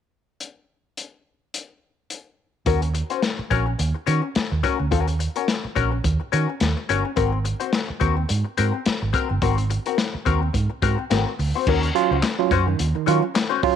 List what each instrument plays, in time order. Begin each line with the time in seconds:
0.40 closed hi-hat
0.97 closed hi-hat
1.54 closed hi-hat
2.10 closed hi-hat
2.66 fingered electric bass D#2, hollow-body jazz guitar C#4 F#4 A#4, kick, closed hi-hat
2.82 muted hollow-body jazz guitar stroke, closed hi-hat
2.94 muted hollow-body jazz guitar stroke, closed hi-hat
3.10 hollow-body jazz guitar C#4 F#4 C5, closed hi-hat
3.22 muted hollow-body jazz guitar stroke, snare, closed hi-hat
3.38 muted hollow-body jazz guitar stroke, muted fingered electric bass stroke
3.50 fingered electric bass A#1, hollow-body jazz guitar C#4 F#4 A#4, kick, closed hi-hat
3.66 muted hollow-body jazz guitar stroke
3.78 fingered electric bass D#2, muted hollow-body jazz guitar stroke, closed hi-hat
3.94 muted hollow-body jazz guitar stroke
4.06 fingered electric bass D#3, hollow-body jazz guitar C#4 F#4 A#4, closed hi-hat
4.22 muted hollow-body jazz guitar stroke
4.35 muted fingered electric bass stroke, snare, closed hi-hat
4.51 fingered electric bass D#2, muted hollow-body jazz guitar stroke
4.63 hollow-body jazz guitar C#4 F#4 A#4, kick, closed hi-hat
4.79 fingered electric bass D2, muted hollow-body jazz guitar stroke
4.91 fingered electric bass D#2, hollow-body jazz guitar C#4 F#4 A#4, kick, closed hi-hat
5.08 muted hollow-body jazz guitar stroke, closed hi-hat
5.19 muted hollow-body jazz guitar stroke, closed hi-hat
5.36 hollow-body jazz guitar C#4 F#4 A#4, closed hi-hat
5.48 muted hollow-body jazz guitar stroke, snare, closed hi-hat
5.64 muted hollow-body jazz guitar stroke, muted fingered electric bass stroke
5.75 fingered electric bass A#1, hollow-body jazz guitar C#4 F#4 A#4, kick, closed hi-hat
5.91 muted hollow-body jazz guitar stroke
6.04 fingered electric bass D#2, muted hollow-body jazz guitar stroke, kick, closed hi-hat
6.20 muted hollow-body jazz guitar stroke
6.32 fingered electric bass D#3, hollow-body jazz guitar C#4 F#4 A#4, closed hi-hat
6.49 muted hollow-body jazz guitar stroke
6.60 fingered electric bass D#2, muted hollow-body jazz guitar stroke, snare, closed hi-hat
6.77 muted hollow-body jazz guitar stroke
6.89 fingered electric bass G1, hollow-body jazz guitar C#4 F#4 A#4, closed hi-hat
7.05 muted hollow-body jazz guitar stroke
7.16 fingered electric bass G#1, hollow-body jazz guitar C4 F#4 A#4, kick, closed hi-hat
7.32 muted hollow-body jazz guitar stroke
7.45 muted hollow-body jazz guitar stroke, closed hi-hat
7.60 hollow-body jazz guitar C4 F#4 C5, closed hi-hat
7.72 muted hollow-body jazz guitar stroke, snare, closed hi-hat
7.88 muted hollow-body jazz guitar stroke, muted fingered electric bass stroke
8.00 fingered electric bass D#2, hollow-body jazz guitar C4 F#4 A#4, kick, closed hi-hat
8.17 muted hollow-body jazz guitar stroke
8.29 fingered electric bass G#2, muted hollow-body jazz guitar stroke, closed hi-hat
8.44 muted hollow-body jazz guitar stroke
8.57 fingered electric bass G#2, hollow-body jazz guitar C4 F#4 A#4, closed hi-hat
8.74 muted hollow-body jazz guitar stroke
8.86 muted fingered electric bass stroke, snare, closed hi-hat
9.02 fingered electric bass G#1, muted hollow-body jazz guitar stroke
9.13 hollow-body jazz guitar C4 F#4 A#4, kick, closed hi-hat
9.29 fingered electric bass G1, muted hollow-body jazz guitar stroke
9.42 fingered electric bass G#1, hollow-body jazz guitar C4 F#4 A#4, kick, closed hi-hat
9.57 muted hollow-body jazz guitar stroke, closed hi-hat
9.70 muted hollow-body jazz guitar stroke, closed hi-hat
9.86 hollow-body jazz guitar C4 F#4 A#4, closed hi-hat
9.98 muted hollow-body jazz guitar stroke, snare, closed hi-hat
10.14 muted hollow-body jazz guitar stroke, muted fingered electric bass stroke
10.25 fingered electric bass D#2, hollow-body jazz guitar C4 F#4 A#4, kick, closed hi-hat
10.42 muted hollow-body jazz guitar stroke
10.53 fingered electric bass G#2, muted hollow-body jazz guitar stroke, kick, closed hi-hat
10.70 muted hollow-body jazz guitar stroke
10.82 fingered electric bass G#2, hollow-body jazz guitar C4 F#4 A#4, kick, closed hi-hat
10.98 muted hollow-body jazz guitar stroke
11.10 fingered electric bass G#1, hollow-body jazz guitar C4 F#4 A#4, snare, closed hi-hat
11.39 fingered electric bass D2, muted hollow-body jazz guitar stroke, open hi-hat
11.55 hollow-body jazz guitar C4 F#4 C5
11.67 fingered electric bass D#2, tine electric piano D#3, hollow-body jazz guitar C#4 F#4 A#4, kick, crash
11.83 closed hi-hat
11.95 tine electric piano F#3 C#4 F4, muted hollow-body jazz guitar stroke, closed hi-hat
12.11 fingered electric bass C#2, tine electric piano C#4 F4, hollow-body jazz guitar C#4 F#4 C5
12.23 snare, clap, closed hi-hat
12.39 tine electric piano F#3 C#4 F4, muted hollow-body jazz guitar stroke
12.51 fingered electric bass F#2, hollow-body jazz guitar C#4 F#4 C5, kick, closed hi-hat
12.67 tine electric piano D#3, muted hollow-body jazz guitar stroke
12.79 fingered electric bass D#2, tine electric piano C#4 F4, closed hi-hat
12.95 tine electric piano D#3, muted hollow-body jazz guitar stroke
13.06 fingered electric bass D#3, tine electric piano F#3 C#4 F4, hollow-body jazz guitar C#4 F#4 A#4, closed hi-hat
13.22 muted hollow-body jazz guitar stroke
13.34 muted hollow-body jazz guitar stroke, snare, clap, closed hi-hat
13.49 hollow-body jazz guitar C#4 F#4 C5
13.62 tine electric piano F#3 C#4 F4, muted hollow-body jazz guitar stroke, kick, open hi-hat